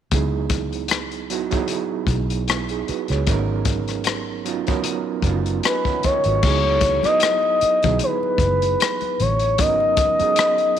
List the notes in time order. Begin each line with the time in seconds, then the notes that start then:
0.11 C#2 F#3 B3 D#4 E4 G#4, kick, closed hi-hat
0.50 kick, closed hi-hat
0.73 closed hi-hat
0.88 cross-stick, closed hi-hat
1.11 closed hi-hat
1.30 F#3 B3 D#4 E4 F#4, closed hi-hat
1.51 F#3 B3 D#4 E4 G#4, kick, closed hi-hat
1.68 closed hi-hat
2.07 B1, kick, closed hi-hat
2.30 closed hi-hat
2.48 B3 E4, cross-stick, closed hi-hat
2.69 D#4 G#4, closed hi-hat
2.88 F#4 B4, muted fingered electric bass stroke, closed hi-hat
3.08 C#2 G#4 C#5, cross-stick, closed hi-hat
3.27 G#1 F#3 A#3 C#4 D#4 A#4, kick, closed hi-hat
3.34 B3
3.65 kick, closed hi-hat
3.88 cross-stick, closed hi-hat
4.04 cross-stick, closed hi-hat
4.45 F#3 B3 C#4 D#4 F4, closed hi-hat
4.67 F#3 B3 C#4 D#4 A#4, kick, closed hi-hat
4.84 closed hi-hat
5.22 F#1 F#3 B3 C#4, kick, closed hi-hat
5.27 D#4 F4
5.46 closed hi-hat
5.63 B4 D#5 G#5, cross-stick, closed hi-hat
5.85 C#5 F#5, kick
6.03 A#4 C#5 D#5, muted fingered electric bass stroke, kick, closed hi-hat
6.24 G#1 B4, closed hi-hat
6.28 F#4
6.43 C#2 F#3 B3 D#4 E4, kick, crash, muted conga
6.47 G#4
6.65 muted conga
6.81 kick, closed hi-hat
7.03 F#3 B3 D#4 E4 D#5, muted fingered electric bass stroke, cross-stick, closed hi-hat, high conga
7.07 B4
7.20 D#5, cross-stick, closed hi-hat, muted conga
7.43 muted conga
7.61 muted fingered electric bass stroke, closed hi-hat
7.82 B1 F#3 B3 D#4 E4 G#4, kick, closed hi-hat, low conga
7.99 closed hi-hat, muted conga, high conga
8.03 B4
8.23 muted conga
8.38 F#1, kick, closed hi-hat, high conga
8.62 closed hi-hat, high conga
8.80 cross-stick, closed hi-hat
9.01 closed hi-hat, muted conga, high conga
9.20 A1 C#5, closed hi-hat, high conga, low conga
9.39 closed hi-hat
9.58 G#1 F#3 B3 C#4 D#4 A#4 D#5, kick, closed hi-hat
9.80 muted conga
9.97 kick, closed hi-hat
10.20 F#3 B3 C#4 D#4 G#4, muted fingered electric bass stroke, closed hi-hat, high conga
10.36 cross-stick, closed hi-hat, muted conga
10.58 closed hi-hat, muted conga